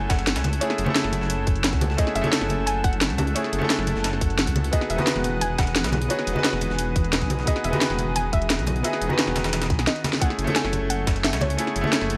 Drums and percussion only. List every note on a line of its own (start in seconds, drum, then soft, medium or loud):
0.10 kick loud
0.10 snare loud
0.10 closed hi-hat medium
0.19 snare soft
0.19 closed hi-hat soft
0.27 snare loud
0.27 closed hi-hat medium
0.36 snare loud
0.36 closed hi-hat medium
0.36 closed hi-hat soft
0.44 snare soft
0.44 closed hi-hat medium
0.44 high conga medium
0.53 closed hi-hat medium
0.61 closed hi-hat medium
0.70 snare soft
0.78 closed hi-hat medium
0.86 high conga medium
0.95 snare loud
0.95 closed hi-hat medium
1.04 snare soft
1.04 snare medium
1.12 closed hi-hat medium
1.12 high conga medium
1.21 snare soft
1.30 closed hi-hat medium
1.47 kick loud
1.47 closed hi-hat medium
1.56 closed hi-hat soft
1.64 snare loud
1.64 closed hi-hat medium
1.73 kick medium
1.73 snare soft
1.73 closed hi-hat soft
1.81 closed hi-hat medium
1.81 high conga loud
1.90 snare soft
1.98 kick loud
1.98 closed hi-hat medium
2.07 snare soft
2.15 closed hi-hat medium
2.24 closed hi-hat soft
2.24 high conga loud
2.33 snare loud
2.33 closed hi-hat medium
2.41 snare medium
2.49 closed hi-hat medium
2.49 high conga medium
2.67 closed hi-hat medium
2.84 kick loud
2.84 closed hi-hat medium
2.93 closed hi-hat soft
3.01 snare loud
3.01 closed hi-hat medium
3.10 closed hi-hat soft
3.18 closed hi-hat medium
3.18 high conga loud
3.27 closed hi-hat soft
3.36 closed hi-hat medium
3.44 snare soft
3.53 closed hi-hat medium
3.61 high conga loud
3.70 snare loud
3.70 closed hi-hat medium
3.79 snare soft
3.79 snare medium
3.87 closed hi-hat medium
3.87 high conga medium
3.96 snare soft
4.04 snare loud
4.04 closed hi-hat medium
4.13 snare soft
4.21 kick loud
4.21 closed hi-hat medium
4.30 closed hi-hat soft
4.39 snare loud
4.39 closed hi-hat medium
4.47 kick medium
4.47 closed hi-hat soft
4.47 closed hi-hat medium
4.56 closed hi-hat medium
4.56 high conga medium
4.64 closed hi-hat medium
4.73 kick loud
4.73 closed hi-hat medium
4.81 snare soft
4.90 closed hi-hat medium
4.98 closed hi-hat soft
4.98 high conga loud
5.07 snare loud
5.07 closed hi-hat medium
5.16 snare soft
5.16 snare medium
5.24 closed hi-hat medium
5.24 high conga medium
5.41 closed hi-hat medium
5.58 kick loud
5.58 snare loud
5.58 closed hi-hat medium
5.67 snare soft
5.67 closed hi-hat soft
5.76 snare loud
5.76 closed hi-hat medium
5.84 snare loud
5.84 closed hi-hat medium
5.84 closed hi-hat soft
5.92 snare soft
5.92 closed hi-hat medium
5.92 high conga loud
6.02 closed hi-hat medium
6.10 closed hi-hat medium
6.19 snare soft
6.27 closed hi-hat medium
6.36 high conga medium
6.44 snare loud
6.44 closed hi-hat medium
6.53 snare soft
6.61 closed hi-hat medium
6.61 high conga medium
6.70 snare soft
6.78 closed hi-hat medium
6.96 kick loud
6.96 closed hi-hat medium
7.04 closed hi-hat soft
7.13 snare loud
7.13 closed hi-hat medium
7.22 kick medium
7.22 snare soft
7.22 closed hi-hat soft
7.30 closed hi-hat medium
7.30 high conga medium
7.39 snare soft
7.47 kick loud
7.47 closed hi-hat medium
7.56 snare soft
7.64 closed hi-hat medium
7.73 closed hi-hat soft
7.73 high conga medium
7.81 snare loud
7.81 closed hi-hat medium
7.90 snare medium
7.99 closed hi-hat medium
7.99 high conga medium
8.16 closed hi-hat medium
8.33 kick loud
8.33 closed hi-hat medium
8.42 closed hi-hat soft
8.50 snare loud
8.50 closed hi-hat medium
8.59 closed hi-hat soft
8.67 closed hi-hat medium
8.67 high conga loud
8.76 closed hi-hat soft
8.84 closed hi-hat medium
8.93 snare soft
9.02 closed hi-hat medium
9.10 high conga medium
9.19 snare loud
9.19 closed hi-hat loud
9.19 closed hi-hat medium
9.27 snare soft
9.27 snare medium
9.36 snare loud
9.36 closed hi-hat medium
9.36 high conga medium
9.44 snare loud
9.44 closed hi-hat medium
9.53 snare loud
9.53 closed hi-hat medium
9.62 snare loud
9.62 snare soft
9.62 closed hi-hat medium
9.70 kick loud
9.70 snare soft
9.70 closed hi-hat medium
9.79 snare medium
9.79 closed hi-hat soft
9.79 closed hi-hat medium
9.87 snare loud
9.87 closed hi-hat loud
9.96 closed hi-hat soft
10.04 snare loud
10.04 closed hi-hat medium
10.04 high conga medium
10.13 snare medium
10.21 kick loud
10.21 closed hi-hat medium
10.21 closed hi-hat loud
10.30 snare soft
10.39 closed hi-hat medium
10.47 closed hi-hat soft
10.47 high conga medium
10.56 snare loud
10.56 closed hi-hat medium
10.56 closed hi-hat loud
10.64 snare medium
10.72 closed hi-hat medium
10.72 high conga medium
10.90 closed hi-hat medium
10.90 closed hi-hat loud
11.07 kick loud
11.07 snare loud
11.07 closed hi-hat medium
11.16 snare soft
11.16 closed hi-hat soft
11.24 snare loud
11.24 closed hi-hat medium
11.33 snare loud
11.33 closed hi-hat medium
11.33 closed hi-hat soft
11.41 snare soft
11.41 closed hi-hat medium
11.41 high conga loud
11.50 closed hi-hat medium
11.58 closed hi-hat loud
11.58 closed hi-hat medium
11.67 snare soft
11.76 closed hi-hat medium
11.84 high conga medium
11.93 snare loud
11.93 closed hi-hat medium
12.01 snare soft
12.01 snare medium
12.10 closed hi-hat medium
12.10 high conga medium